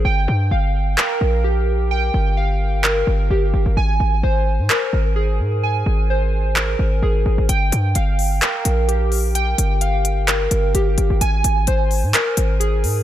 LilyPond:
<<
  \new Staff \with { instrumentName = "Synth keys" } { \time 4/4 \key g \phrygian \tempo 4 = 129 g''4 f''4 bes'4 g'4 | g''4 f''4 bes'4 g'4 | aes''4 c''4 bes'4 aes'4 | aes''4 c''4 bes'4 aes'4 |
g''4 f''4 bes'4 g'4 | g''4 f''4 bes'4 g'4 | aes''4 c''4 bes'4 aes'4 | }
  \new Staff \with { instrumentName = "808-style bass" } { \clef bass \time 4/4 \key g \phrygian g,,8 g,8 g,,4 r8 bes,,4.~ | bes,,8 g,,2 g,,8 g,,8 g,,16 g,,16 | aes,,8 aes,,8 aes,,8. aes,16 r8 aes,,4 aes,8~ | aes,8 aes,,2 aes,,8 aes,,8 aes,,16 aes,,16 |
g,,8 g,8 g,,4 r8 bes,,4.~ | bes,,8 g,,2 g,,8 g,,8 g,,16 g,,16 | aes,,8 aes,,8 aes,,8. aes,16 r8 aes,,4 aes,8 | }
  \new DrumStaff \with { instrumentName = "Drums" } \drummode { \time 4/4 r4 r4 hc4 r4 | r4 r4 hc4 r4 | r4 r4 hc4 r4 | r4 r4 hc4 r4 |
hh8 hh8 hh8 hho8 <hc hh>8 hh8 hh8 hho8 | hh8 hh8 hh8 hh8 <hc hh>8 hh8 hh8 hh8 | hh8 hh8 hh8 hho8 <hc hh>8 hh8 hh8 hho8 | }
>>